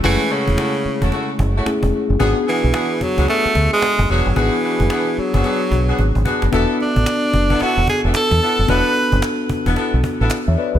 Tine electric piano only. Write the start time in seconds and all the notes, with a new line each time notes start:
0.03 G#3 C#4 E4 G#4
0.09 A3
1.65 A3 C#4 E4 G#4
2.19 B3 D4 F#4 G#4
4.35 B3 D4 F#4 G#4
6.51 B3 D4 F#4 A4
8.67 B3 D4 F#4 A4
10.48 C#5 E5
10.58 B4 D5
10.75 G#4 B4